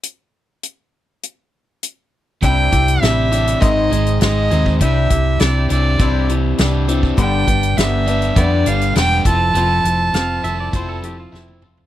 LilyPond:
<<
  \new Staff \with { instrumentName = "Fiddle" } { \time 4/4 \key c \major \tempo 4 = 101 r1 | g''4 e''4 ees''4 ees''4 | e''4 d''8 d''4 r4. | g''4 e''4 d''8 f''8 g''8 a''8~ |
a''2. r4 | }
  \new Staff \with { instrumentName = "Pedal steel guitar" } { \time 4/4 \key c \major r1 | r1 | r1 | r1 |
r4 f''8 e''16 d''16 c''16 a'16 g'16 f'16 e'8 f'8 | }
  \new Staff \with { instrumentName = "Steel-string acoustic guitar" } { \time 4/4 \key c \major r1 | <c g d' e' g'>8 <d' e' g'>8 <g d' e' g'>8 <d' e' g'>8 <aes, ees aes c' ees' aes'>8 <aes c' ees' aes'>8 <aes c' ees' aes'>8 <aes c' ees' aes'>8 | <c g d' e' g'>8 <d' e' g'>8 <g d' e' g'>8 <d' e' g'>8 <c g d' e' g'>8 <d' e' g'>8 <g d' e' g'>8 <d' e' g'>8 | <g, d g b d' g'>8 <g b d' g'>8 <g b d' g'>8 <g b d' g'>8 <g, d g b d' g'>8 <g b d' g'>8 <g b d' g'>8 <c' e' a'>8 |
<f c' e' a'>8 <c' e'>8 <f c' a'>8 <c' e' a'>8 <f c' e' a'>8 <c' e' a'>8 <f c' e' a'>8 <c' a'>8 | }
  \new Staff \with { instrumentName = "Overdriven electric guitar" } { \time 4/4 \key c \major r1 | c4 c'8 d'8 aes,8 aes8 ees'8 c'8 | c4 c'8 d'8 c'8 g8 d'8 c'8 | g,4 b8 d'8 b8 g8 d'8 f8 |
f4 c'8 e'8 c'8 f8 e'8 c'8 | }
  \new Staff \with { instrumentName = "Fingered electric bass" } { \clef bass \time 4/4 \key c \major r1 | c,8 c,8 a,,4 aes,,8 aes,,8 aes,,8 ees,8 | c,8 c,8 c,8 c,8 c,4 c,4 | g,,8 g,,8 g,,4 f,8 g,,8 e,,8 f,,8 |
f,,8 f,,8 f,,8 f,,8 f,,4 f,,4 | }
  \new DrumStaff \with { instrumentName = "Drums" } \drummode { \time 4/4 hh4 hh4 hh4 hh4 | <hh bd>8 <hh bd>16 hh16 <hh sn>8 hh16 hh16 <hh bd>8 hh16 hh16 <hh sn>8 hh16 bd16 | <hh bd>8 <hh bd>8 <hh sn>8 hh8 <hh bd>8 hh8 <hh sn>8 hh16 bd16 | <hh bd>8 <hh bd>16 hh16 <hh sn>8 hh16 hh16 <hh bd>8 hh16 hh16 <hh sn>8 <hh bd>8 |
hh8 hh8 <hh sn>8 hh8 <hh bd>8 hh8 sn16 tommh16 toml16 tomfh16 | }
>>